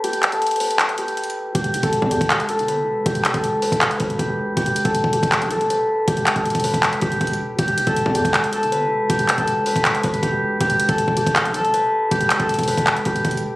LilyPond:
<<
  \new Staff \with { instrumentName = "Harp" } { \time 4/4 \key e \minor \tempo 4 = 159 g'8. a'8. b'4 g'4. | g'8. a'16 r8 g'8 r8 a'8 b'4 | g'8. a'8. b'4 b'8 g'8 r8 | g'8. a'16 r8 g'8 r8 a'8 b'4 |
g'8. a'8. b'4 g'4. | g'8. a'16 r8 g'8 r8 a'8 b'4 | g'8. a'8. b'4 b'8 g'8 r8 | g'8. a'16 r8 g'8 r8 a'8 b'4 |
g'8. a'8. b'4 g'4. | }
  \new Staff \with { instrumentName = "808-style bass" } { \clef bass \time 4/4 \key e \minor r1 | e,,8 g,,16 e,,8 e,8 e,,4 g,,8~ g,,32 e,,8~ e,,32 | e,,8 g,,16 e,,4 e,,8. e,,8 e,,4 | e,,8. e,,8 e,,8 e,,8 b,,16. e,,16. r4 |
e,,8. e,,8 e,,8 e,,8. e,,8 e,,8 r8 | e,,8 g,,16 e,,8 e,8 e,,4 g,,8~ g,,32 e,,8~ e,,32 | e,,8 g,,16 e,,4 e,,8. e,,8 e,,4 | e,,8. e,,8 e,,8 e,,8 b,,16. e,,16. r4 |
e,,8. e,,8 e,,8 e,,8. e,,8 e,,8 r8 | }
  \new DrumStaff \with { instrumentName = "Drums" } \drummode { \time 4/4 hh16 hh16 <hc hh>16 hh16 hh32 hh32 hh32 hh32 hho16 hh16 <hc hh>16 hh16 hh16 hh16 \tuplet 3/2 { hh16 hh16 hh16 r16 r16 r16 } | <hh bd>16 hh16 hh16 <hh bd>16 hh16 bd16 hh16 <hh bd>16 <hc hh>16 hh16 hh16 hh16 hh4 | <hh bd>16 hh16 <hc hh>16 <hh bd>16 hh8 hho16 <hh bd>16 <hc hh>16 hh16 <hh bd>16 hh16 <hh bd>4 | <hh bd>16 hh16 hh16 <hh bd>16 hh16 bd16 hh16 <hh bd>16 <hc hh>16 hh16 hh16 hh16 hh4 |
<hh bd>16 hh16 <hc hh>16 <hh bd>16 hh32 hh32 <hh bd>32 hh32 hho16 <hh bd>16 <hc hh>16 hh16 <hh bd>16 hh16 \tuplet 3/2 { <hh bd>16 hh16 hh16 r16 r16 r16 } | <hh bd>16 hh16 hh16 <hh bd>16 hh16 bd16 hh16 <hh bd>16 <hc hh>16 hh16 hh16 hh16 hh4 | <hh bd>16 hh16 <hc hh>16 <hh bd>16 hh8 hho16 <hh bd>16 <hc hh>16 hh16 <hh bd>16 hh16 <hh bd>4 | <hh bd>16 hh16 hh16 <hh bd>16 hh16 bd16 hh16 <hh bd>16 <hc hh>16 hh16 hh16 hh16 hh4 |
<hh bd>16 hh16 <hc hh>16 <hh bd>16 hh32 hh32 <hh bd>32 hh32 hho16 <hh bd>16 <hc hh>16 hh16 <hh bd>16 hh16 \tuplet 3/2 { <hh bd>16 hh16 hh16 r16 r16 r16 } | }
>>